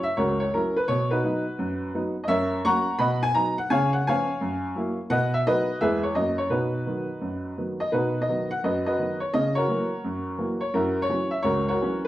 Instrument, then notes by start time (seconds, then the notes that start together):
upright piano
0.03 E5
0.17 C#2 F#4 A#4 C#5
0.40 C#5
0.54 F#3 C#4 E4 A#4
0.76 B4
0.88 B2 C#5
1.11 D#4 F#4 B4
1.24 F#3 B3 D#4
1.59 F#2
1.94 F#3 B3 D#4
2.24 D#5
2.28 F#2 A#4 C#5 E5
2.64 F#3 A#3 C#4 F#5 A#5 C#6
2.99 B2 D#5 F#5 B5
3.23 G#5
3.35 F#3 B3 D#4 A#5
3.58 F#5
3.70 C#3 C#5 F5 G#5
3.93 F#5
4.07 F3 B3 C#4 C#5 F5 G#5
4.41 F#2
4.75 F#3 A#3 E4
5.10 B2 B4 D#5 F#5
5.34 E5
5.47 F#3 B3 D#4 F#4 B4 D#5
5.81 E2 G#3 B3 G#4 B4 E5
6.03 C#5
6.15 F#2 F#3 A#3 D#5
6.38 C#5
6.50 B2 D#4 F#4 B4
6.86 D#3 F#3 B3
7.21 F#2
7.57 D#3 F#3 B3
7.80 D#5
7.92 B2 D#4 F#4 B4
8.22 D#5
8.29 D#3 F#3 B3
8.51 F#5
8.64 F#2 F#4 B4 D#5
8.86 F#4 B4 D#5
8.98 D#3 F#3 B3
9.20 C#5
9.34 C#3 D#5
9.55 F#4 A#4 C#5
9.68 E3 F#3 A#3
10.04 F#2
10.38 E3 F#3 A#3
10.61 C#5
10.74 F#2 E4 F#4 A#4
11.02 C#5
11.09 E3 F#3 C#4
11.31 E5
11.43 C#2 F#4 A#4 C#5
11.68 F#4 A#4 C#5
11.81 E3 F#3 C#4